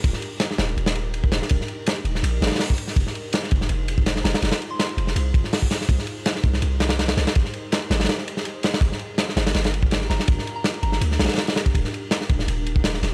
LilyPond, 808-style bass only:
\new Staff \with { instrumentName = "808-style bass" } { \clef bass \time 4/4 \key g \phrygian \tempo 4 = 164 ees,,8 r4 ees,,8 ees,,4. ees,,8 | ees,,8 r4 ees,,8 bes,,8 g,,8 r4 | f,,8 r4 f,,8 f,,4. f,,8 | f,,8 r4 f,,8 c,8 aes,,8 r4 |
c,8 r4 c,8 c,4. c,8 | aes,,8 r4 aes,,8 r2 | g,,8 r4 g,,8 g,,4. g,,8 | g,,8 r4 g,,8 d,8 bes,,8 r4 |
ees,,8 r4 ees,,8 ees,,4. ees,,8 | }